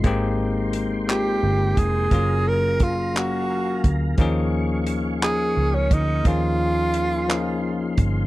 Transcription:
<<
  \new Staff \with { instrumentName = "Tonewheel organ" } { \time 6/8 \key ees \mixolydian \tempo 4. = 58 << { c'''2. | bes''2. | des'''2. | c'''2. | } \\ { <bes' g''>2. | <aes' f''>2.~ | <aes' f''>2.~ | <aes' f''>2. | } >> }
  \new Staff \with { instrumentName = "Tenor saxophone" } { \time 6/8 \key ees \mixolydian r4. g'4 aes'8~ | aes'8 bes'8 f'8 ges'4 r8 | r4. aes'8. des'16 ees'8 | f'2~ f'8 r8 | }
  \new Staff \with { instrumentName = "Tine electric piano" } { \time 6/8 \key ees \mixolydian <aes bes c' ees' g'>4. <aes bes c' ees' f'>4. | <ges bes des' f' aes'>4. <ges bes des' bes' f''>4. | <f bes des' ees' aes'>4. <f bes des' ees' bes'>4. | <f bes des' ees' aes'>4. <f bes des' ees' aes'>4. | }
  \new Staff \with { instrumentName = "Fingered electric bass" } { \clef bass \time 6/8 \key ees \mixolydian aes,,2 g,,8 f,,8 | ges,,2~ ges,,8 d,8 | ees,2 des,8 d,8 | ees,2~ ees,8 g,,8 | }
  \new DrumStaff \with { instrumentName = "Drums" } \drummode { \time 6/8 <hh bd>4 hh8 <hc hh>4 <hh bd>8 | <hh bd>4 <hh bd>8 <hc hh>4 <hh bd>8 | <hh bd>4 hh8 <hc hh>4 <hh bd>8 | <hh bd>4 hh8 <hc hh>4 <hh bd>8 | }
>>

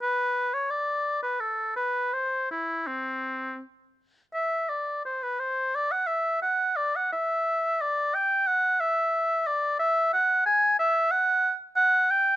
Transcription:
\new Staff \with { instrumentName = "Oboe" } { \time 3/4 \key c \major \tempo 4 = 88 b'8. des''16 d''8. b'16 a'8 b'8 | c''8 e'8 c'4 r4 | \key e \minor e''8 d''8 c''16 b'16 c''8 d''16 fis''16 e''8 | fis''8 d''16 fis''16 e''4 d''8 g''8 |
fis''8 e''4 d''8 e''8 fis''8 | aes''8 e''8 fis''8. r16 fis''8 g''8 | }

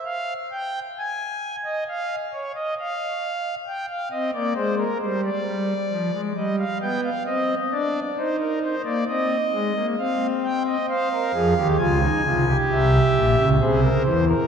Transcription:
<<
  \new Staff \with { instrumentName = "Pipe organ" } { \time 4/4 \key c \phrygian \tempo 4 = 66 << { f''8 g''8 aes''8. ees''16 f''8 des''16 ees''16 f''4 | g''16 f''16 ees''16 d''16 c''16 bes'16 c''16 d''4~ d''16 ees''16 f''16 g''16 f''16 | ees''8 d''8 c''16 bes'16 c''16 d''16 ees''4 f''8 g''16 ees''16 | f''4 aes''4 e''4 c''4 | } \\ { r1 | r8 c'16 bes16 aes8 g8 g8 f16 aes16 g8 b8 | c'8 d'8 ees'8. bes16 c'8 aes16 bes16 c'4 | c''16 bes'16 aes'16 g'16 f'16 ees'16 f'16 g'4~ g'16 aes'16 bes'16 c''16 bes'16 | } >> }
  \new Staff \with { instrumentName = "Pipe organ" } { \clef bass \time 4/4 \key c \phrygian r1 | r1 | r1 | r8 <f, f>16 <ees, ees>16 <des, des>8 <c, c>8 <c, c>8 <bes,, bes,>16 <des, des>16 <c, c>8 <e, e>8 | }
>>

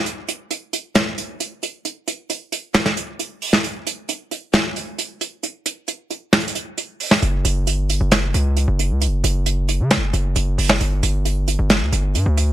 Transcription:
<<
  \new Staff \with { instrumentName = "808-style bass" } { \clef bass \time 4/4 \key g \lydian \tempo 4 = 134 r1 | r1 | r1 | r1 |
fis,,8 fis,,8 g,,8. fis,,8. cis,8. fis,,8 cis,16~ | cis,32 fis,,16. fis,,4~ fis,,16 cis16. fis,,16. fis,,8 fis,,8 fis,,8 | g,,8 g,,4~ g,,16 g,,8 d,16 g,,8 g,16 d,8. | }
  \new DrumStaff \with { instrumentName = "Drums" } \drummode { \time 4/4 hh8 hh8 hh8 hh8 <hh sn>8 hh8 hh8 hh8 | hh8 hh8 hh8 hh8 <hh sn>16 sn16 hh8 hh8 hho16 sn16 | hh8 hh8 hh8 hh8 <hh sn>8 hh8 hh8 hh8 | hh8 hh8 hh8 hh8 \tuplet 3/2 { <hh sn>16 hh16 hh16 hh16 r16 r16 } hh8 hho16 sn16 |
hh8 hh8 hh8 hh8 <hh sn>8 hh8 hh8 hh8 | hh8 hh8 hh8 hh8 <hh sn>8 hh8 hh8 hho16 sn16 | hh8 hh8 hh8 hh8 <hh sn>8 hh8 hh8 hh8 | }
>>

